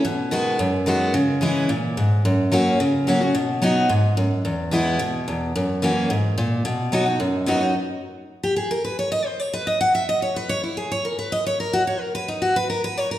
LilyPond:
\new Staff \with { instrumentName = "Steel-string acoustic guitar" } { \time 4/4 \key b \major \tempo 4 = 218 << { r4 <dis gis b fis'>4 r4 <dis gis b fis'>4 | r4 <e gis cis' e'>4 r2 | r4 <fis ais cis' fis'>4 r4 <fis ais cis' fis'>8 <cis' fis'>8 | r4 <fis b dis' fis'>4 r2 |
r4 <e gis b e'>4 r2 | r4 <e ais cis' fis'>4 r2 | r4 <fis b dis' fis'>8 <dis' fis'>8 r4 <fis b dis' fis'>8 <dis' fis'>8 | r2 r8 g'8 gis'8 ais'8 |
b'8 cis''8 dis''8 c''8 cis''8 b'8 dis''8 fis''8 | e''8 dis''8 cis''8 b'8 cis''8 e'8 gis'8 cis''8 | ais'8 b'8 dis''8 cis''8 ais'8 fis'8 cis''8 ais'8 | b'8 dis'8 fis'8 b'8 ais'8 b'8 cis''8 ais'8 | } \\ { b,2 fis,2 | cis2 ais,4 gis,4 | fis,2 cis2 | b,2 gis,4 fis,4 |
e,2 b,4 e,4 | fis,2 gis,4 ais,4 | b,2 fis,2 | r1 |
r1 | r1 | r1 | r1 | } >> }